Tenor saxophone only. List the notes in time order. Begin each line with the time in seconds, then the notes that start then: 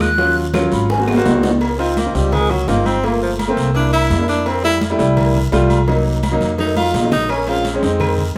1.97 A#3
2.15 G3
2.33 G#3
2.51 F#3
2.69 A#3
2.86 C4
3.05 A#3
3.22 F3
3.76 D4
3.93 E4
4.29 D4
4.47 C4
4.64 E4
6.59 D#4
6.77 F4
7.12 D#4
7.30 C#4
7.48 F4